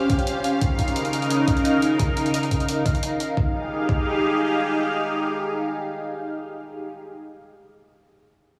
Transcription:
Already playing: C#4 G4 C5 F5
0.10 kick, closed hi-hat
0.19 closed hi-hat
0.27 closed hi-hat
0.44 closed hi-hat
0.61 C#3 D#4 A#4, kick, closed hi-hat
0.79 kick, closed hi-hat
0.88 closed hi-hat
0.96 closed hi-hat
1.05 closed hi-hat
1.13 closed hi-hat
1.22 closed hi-hat
1.30 closed hi-hat
1.48 kick, closed hi-hat
1.57 closed hi-hat
1.65 closed hi-hat
1.82 closed hi-hat
1.99 kick, closed hi-hat
2.17 closed hi-hat
2.26 closed hi-hat
2.34 closed hi-hat
2.43 closed hi-hat
2.51 kick, closed hi-hat
2.60 closed hi-hat
2.69 closed hi-hat
2.86 kick, closed hi-hat
2.95 closed hi-hat
3.03 closed hi-hat
3.20 closed hi-hat
3.37 D#4 G4 G#4 F5, kick
3.89 kick

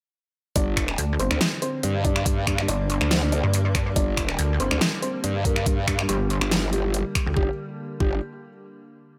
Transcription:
0.56 G1 D3 G3 A#3 D4 D5, kick, closed hi-hat
0.77 finger snap, kick, closed hi-hat
0.88 finger snap
0.98 D2, closed hi-hat
1.19 G1 C4 C5, closed hi-hat
1.31 D2, finger snap
1.41 snare, closed hi-hat
1.62 C4 C5, closed hi-hat
1.83 G2, closed hi-hat
2.05 D4 D5, kick, closed hi-hat
2.16 finger snap
2.26 kick, closed hi-hat
2.47 G2, finger snap, kick, closed hi-hat
2.58 finger snap
2.68 G1 D4 D5, closed hi-hat
2.90 closed hi-hat
3.01 D2, finger snap
3.11 snare, closed hi-hat
3.32 D4 D5, closed hi-hat
3.43 G2
3.54 closed hi-hat
3.75 finger snap, kick, closed hi-hat
3.96 G1 D4 D5, kick, closed hi-hat
4.17 finger snap, kick, closed hi-hat
4.29 finger snap
4.39 D2, closed hi-hat
4.60 G1 C4 C5, closed hi-hat
4.71 D2, finger snap
4.81 snare, closed hi-hat
5.02 C4 C5, closed hi-hat
5.24 G2, closed hi-hat
5.45 A#3 A#4, kick, closed hi-hat
5.56 finger snap
5.66 kick, closed hi-hat
5.88 G2, finger snap, kick, closed hi-hat
5.99 finger snap
6.09 G1 G3 G4, closed hi-hat
6.30 closed hi-hat
6.41 G1, finger snap
6.51 snare, closed hi-hat
6.73 G3 G4, closed hi-hat
6.94 closed hi-hat
7.15 finger snap, kick, closed hi-hat
7.26 D2
7.37 G1 G4, kick
8.00 G1 G4, kick

